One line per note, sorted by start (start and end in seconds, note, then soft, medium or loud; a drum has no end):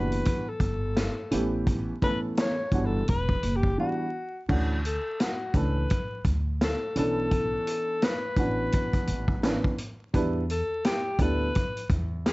0.00 0.19 F#1 medium
0.00 0.43 E3 medium
0.00 0.43 G3 medium
0.00 0.43 B3 medium
0.00 0.43 D4 medium
0.00 0.44 F#4 medium
0.00 0.50 B4 loud
0.12 closed hi-hat medium
0.25 kick loud
0.25 closed hi-hat medium
0.49 1.55 A4 medium
0.60 1.07 G1 medium
0.60 kick medium
0.60 closed hi-hat medium
0.97 snare loud
0.97 closed hi-hat medium
1.31 1.90 A1 medium
1.31 1.91 E3 medium
1.31 1.91 A3 medium
1.31 1.91 B3 medium
1.31 1.91 C#4 medium
1.31 1.92 G4 medium
1.31 closed hi-hat medium
1.67 kick loud
1.67 closed hi-hat medium
2.02 2.54 E3 medium
2.02 2.55 A3 medium
2.02 2.55 B3 medium
2.02 2.55 C#4 medium
2.02 2.55 A4 medium
2.02 2.19 B4 loud
2.02 kick medium
2.02 closed hi-hat medium
2.37 2.87 C#5 loud
2.37 snare loud
2.37 closed hi-hat loud
2.72 3.01 G1 medium
2.72 2.99 E3 medium
2.72 3.00 G3 medium
2.72 3.00 B3 medium
2.72 3.00 D4 medium
2.72 3.00 F#4 medium
2.72 kick medium
2.72 closed hi-hat medium
2.86 3.09 A4 medium
3.08 3.38 E1 loud
3.08 3.58 B4 loud
3.08 kick loud
3.08 closed hi-hat medium
3.29 kick loud
3.43 3.72 F#1 loud
3.43 closed hi-hat medium
3.56 3.79 G4 loud
3.63 kick medium
3.78 4.05 E3 medium
3.78 4.06 G3 medium
3.78 4.06 B3 medium
3.78 4.06 D4 medium
3.78 4.06 F#4 medium
3.78 4.46 F#4 medium
4.48 4.96 D2 medium
4.48 4.76 E3 medium
4.48 4.76 A3 medium
4.48 4.76 C#4 medium
4.48 4.76 D4 medium
4.48 4.77 F#4 medium
4.48 kick medium
4.48 crash medium
4.85 5.23 A4 medium
4.85 closed hi-hat medium
5.20 5.58 F#4 medium
5.20 snare loud
5.20 closed hi-hat medium
5.54 5.84 C#2 medium
5.54 5.82 E3 medium
5.54 5.82 A3 medium
5.54 5.82 C#4 medium
5.54 5.82 D4 medium
5.54 5.83 A4 medium
5.54 6.27 B4 medium
5.54 kick loud
5.54 closed hi-hat medium
5.90 kick loud
5.90 closed hi-hat medium
6.25 6.72 D2 medium
6.25 kick medium
6.25 closed hi-hat medium
6.61 6.95 A4 medium
6.61 snare loud
6.61 closed hi-hat medium
6.95 7.55 B1 medium
6.95 8.10 E3 medium
6.95 8.11 B3 medium
6.95 8.11 C#4 medium
6.95 8.11 D4 medium
6.95 8.11 A4 medium
6.95 8.05 A4 loud
6.95 closed hi-hat medium
7.31 kick medium
7.31 closed hi-hat medium
7.67 closed hi-hat medium
8.02 9.80 B4 loud
8.02 snare loud
8.02 closed hi-hat medium
8.36 8.66 A1 medium
8.36 9.38 E3 medium
8.36 9.38 B3 medium
8.36 9.38 C#4 medium
8.36 9.38 D4 medium
8.36 9.38 F#4 medium
8.36 kick loud
8.36 closed hi-hat medium
8.72 kick loud
8.72 closed hi-hat medium
8.93 kick medium
8.93 closed hi-hat soft
9.07 9.55 A1 loud
9.07 closed hi-hat medium
9.28 kick medium
9.43 9.70 E3 medium
9.43 9.70 B3 medium
9.43 9.71 C#4 medium
9.43 9.71 D4 medium
9.43 9.71 B4 medium
9.43 snare loud
9.43 closed hi-hat medium
9.64 kick medium
9.78 closed hi-hat medium
10.13 10.61 E2 loud
10.13 10.41 G3 medium
10.13 10.41 B3 medium
10.13 10.41 D4 medium
10.13 10.41 E4 medium
10.13 10.42 B4 medium
10.13 kick medium
10.13 closed hi-hat medium
10.50 10.83 A4 medium
10.50 closed hi-hat medium
10.84 11.23 G4 medium
10.84 snare loud
10.84 closed hi-hat medium
11.19 11.48 D2 medium
11.19 11.47 G3 medium
11.19 11.47 B3 medium
11.19 11.47 D4 medium
11.19 11.47 E4 medium
11.19 11.47 A4 medium
11.19 11.91 B4 loud
11.19 kick loud
11.19 closed hi-hat medium
11.55 kick medium
11.55 closed hi-hat medium
11.77 closed hi-hat soft
11.90 12.33 E2 loud
11.90 kick medium
11.90 closed hi-hat medium
12.26 12.33 A4 medium
12.26 snare loud
12.26 closed hi-hat medium